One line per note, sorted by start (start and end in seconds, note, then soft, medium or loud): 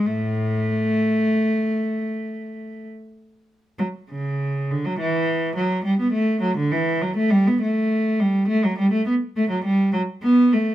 0.06 0.96 A2 soft
0.06 2.87 A3 medium
3.79 3.87 F#3 medium
4.11 4.69 C#3 soft
4.71 4.85 D3 soft
4.85 4.99 F#3 medium
5.00 5.56 E3 medium
5.56 5.85 F#3 medium
5.85 5.99 G3 medium
6.00 6.14 B3 soft
6.13 6.42 A3 medium
6.42 6.57 F#3 medium
6.57 6.72 D3 medium
6.72 7.01 E3 medium
7.02 7.16 F#3 medium
7.16 7.31 A3 medium
7.30 7.45 G3 medium
7.47 7.61 B3 medium
7.62 8.18 A3 medium
8.20 8.49 G3 medium
8.48 8.62 A3 medium
8.64 8.78 F#3 medium
8.78 8.92 G3 medium
8.92 9.06 A3 medium
9.06 9.14 B3 medium
9.36 9.50 A3 medium
9.50 9.64 F#3 medium
9.65 9.93 G3 medium
9.93 10.01 F#3 medium
10.22 10.50 B3 medium
10.53 10.75 A3 medium